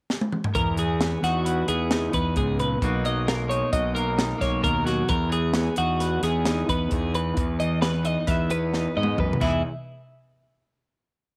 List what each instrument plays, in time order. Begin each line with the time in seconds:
0.10 snare
0.21 high tom
0.32 mid tom
0.44 floor tom
0.55 fingered electric bass E2, clean electric guitar E2 A#4, kick, closed hi-hat
0.77 clean electric guitar E3 G#4, closed hi-hat
1.01 clean electric guitar B3, snare, closed hi-hat
1.23 fingered electric bass E2, clean electric guitar D#4 F#4, snare, closed hi-hat
1.45 clean electric guitar B4, closed hi-hat
1.68 fingered electric bass E2, clean electric guitar B3 G#4, closed hi-hat
1.91 clean electric guitar D#4, snare, closed hi-hat
2.13 fingered electric bass E2, clean electric guitar B3 B4, kick, closed hi-hat
2.36 fingered electric bass C#2, clean electric guitar G#2 G#4, kick, closed hi-hat
2.59 clean electric guitar A#2 B4, closed hi-hat
2.82 fingered electric bass B1, clean electric guitar B2 F#3 A#3 D#4 F#4, kick, closed hi-hat
3.05 clean electric guitar F#3 D#5, closed hi-hat
3.28 clean electric guitar A#3 A#4, snare, closed hi-hat
3.49 clean electric guitar D#4 C#5, closed hi-hat
3.73 fingered electric bass B1, clean electric guitar F#4 D#5, kick, closed hi-hat
3.95 clean electric guitar A#3 A#4, closed hi-hat
4.18 clean electric guitar D#4, snare, closed hi-hat
4.38 fingered electric bass B1, clean electric guitar A#3 C#5, kick, snare, closed hi-hat
4.62 fingered electric bass D#2, clean electric guitar B2 A#4, kick, closed hi-hat
4.84 clean electric guitar F#3 F#4, snare, closed hi-hat
5.07 clean electric guitar E2 A#4, fingered electric bass E2, kick, closed hi-hat
5.29 clean electric guitar E3 G#4, closed hi-hat
5.54 clean electric guitar B3, snare, closed hi-hat
5.76 fingered electric bass E2, clean electric guitar D#4 F#4, closed hi-hat
6.00 clean electric guitar B4, snare, closed hi-hat
6.23 fingered electric bass E2, clean electric guitar B3 G#4, snare, closed hi-hat
6.45 clean electric guitar D#4, snare, closed hi-hat
6.69 fingered electric bass E2, clean electric guitar B3 B4, kick, closed hi-hat
6.91 fingered electric bass E2, clean electric guitar E2 G#4, kick, closed hi-hat
7.14 clean electric guitar E3 B4, closed hi-hat
7.37 clean electric guitar E2, fingered electric bass E2, kick, closed hi-hat
7.60 clean electric guitar E3 D#5, closed hi-hat
7.81 clean electric guitar B3 B4, snare, closed hi-hat
8.03 clean electric guitar D#4 D#5, closed hi-hat
8.27 fingered electric bass E2, clean electric guitar B4 E5, kick, snare, closed hi-hat
8.50 clean electric guitar B3 B4, closed hi-hat
8.74 clean electric guitar D#4, snare
8.97 fingered electric bass G#2, clean electric guitar B3 D#5
9.03 high tom
9.17 clean electric guitar E2 B4, fingered electric bass F#2, kick, mid tom
9.33 mid tom
9.41 fingered electric bass E2, clean electric guitar E2 E3 B3 D#4 E4 G#4, kick, crash